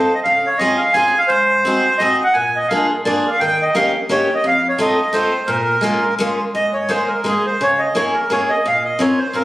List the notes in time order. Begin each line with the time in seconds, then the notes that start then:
Already playing: F4 A4 C5
0.15 D#5
0.23 C#3 F5
0.47 C#5
0.58 C4 C#4 F4 G#4 D#5
0.77 F5
0.93 C4 C#4 F4 G#4 G#5
1.18 F5
1.28 G#2 C5
1.65 C4 D#4 F#4 G#4
1.98 C4 D#4 F#4 G#4 D#5
2.24 F#5
2.33 A#2 G#5
2.56 D#5
2.68 A#3 D4 F4 F5
2.72 G#4
3.05 A#3 D4 F4 G#4 D5
3.28 F5
3.40 D#3 G5
3.62 D#5
3.75 A#3 C#4 D#4 G4 F5
4.09 A#3 C#4 D#4 G4 C#5
4.35 D#5
4.44 F2 F5
4.69 C#5
4.78 A3 C4 D#4 F4 D#5
5.13 A3 C4 D#4 F4 C5
5.47 A#2 A#4
5.81 G#3 A#3 C#4 F4
6.19 G#3 A#3 C#4 F4
6.55 G#2 D#5
6.73 C#5
6.89 G#3 A#3 D#4 G#4 C5
7.08 A#4
7.24 G#3 A#3 D#4 G#4
7.28 G#4
7.46 C5
7.61 C#3 C#5
7.79 D#5
7.95 A#3 C#4 E4 G#4 C#5
8.14 A#4
8.30 A#3 C#4 E4 G#4 C#5
8.50 D#5
8.66 A#2 F5
8.84 D#5
8.99 C4 C#4 F4 A#4 C#5
9.18 C5
9.33 C4 C#4 F4 A#4